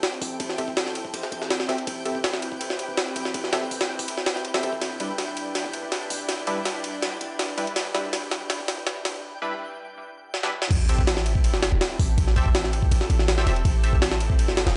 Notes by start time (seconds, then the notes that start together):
Already playing: C4 E4 G4 A4 G5 G6
0.03 snare, ride
0.21 A1, kick, open hi-hat
0.40 A1, kick, ride
0.49 snare
0.58 C4 G4 A4 E5, kick, ride
0.68 kick
0.77 snare, ride
0.86 snare
0.95 ride
1.05 kick
1.13 A1, ride
1.23 snare
1.32 A1, ride
1.42 snare
1.50 snare, ride
1.60 snare
1.69 E1 C4 G4 A4 E5, snare, ride
1.78 ride
1.87 A1 B4, kick, ride
2.05 C4 G4 A4 E5, ride
2.15 kick
2.24 snare, ride
2.33 snare
2.42 ride
2.52 kick
2.61 ride
2.70 G1, snare
2.79 ride
2.88 E1
2.97 snare, ride
3.16 A1, ride
3.25 snare
3.34 A1, kick, ride
3.44 snare
3.53 C4 G4 A4 E5, snare, ride
3.71 kick, open hi-hat
3.81 snare, ride
3.99 kick, open hi-hat
4.08 ride
4.18 snare
4.26 snare, ride
4.36 snare
4.45 ride
4.54 D2 C4 G4 A4 E5, snare, ride
4.63 A1 C4 G4 A4 E5, ride
4.73 kick
4.81 G1 D4 E4, snare, ride
5.00 G3 D4 E4 B4, ride
5.18 snare, ride
5.37 ride
5.55 snare, ride
5.65 G1
5.73 ride
5.83 D1
5.92 snare, ride
6.10 G1, open hi-hat
6.29 G1, snare, ride
6.47 G3 D4 E4 B4, ride
6.65 snare, ride
6.84 ride
7.02 G1, snare, ride
7.21 G1, ride
7.39 snare, ride
7.58 D1 G3 D4 E4 B4, ride
7.67 ride
7.76 G1, snare, ride
7.94 G3 D4 E4 B4, snare, ride
8.13 snare, ride
8.31 snare, ride
8.50 snare, ride
8.59 G1
8.68 snare, ride
8.78 D1
8.87 snare, ride
9.05 G1, snare, ride
9.42 G3 D4 E4 B4
10.34 snare
10.43 G3 D4 E4 B4, snare
10.62 snare
10.70 A1 C4 E4 G4 A4, kick, crash, ride, sub drop
10.89 C4 G4 A4 E5, ride
10.99 kick
11.07 snare, ride
11.17 snare
11.26 ride
11.35 kick
11.44 ride
11.54 G1, snare
11.63 snare, ride
11.72 E1
11.81 snare, ride
11.99 A1, kick, open hi-hat
12.18 A1, kick, ride
12.27 snare
12.36 C4 G4 A4 E5, kick, ride
12.46 kick
12.55 snare, ride
12.64 snare
12.73 ride
12.83 kick
12.91 A1, ride
13.01 snare
13.10 A1, ride
13.19 snare
13.28 snare, ride
13.38 C4 G4 A4 E5, snare
13.46 E1 C4 G4 A4 E5, snare, ride
13.56 ride
13.65 A1, kick, ride
13.83 C4 G4 A4 E5, ride
13.93 kick
14.02 snare, ride
14.12 snare
14.20 ride
14.30 kick
14.39 ride
14.48 G1, snare
14.57 snare, ride
14.66 E1, snare, ride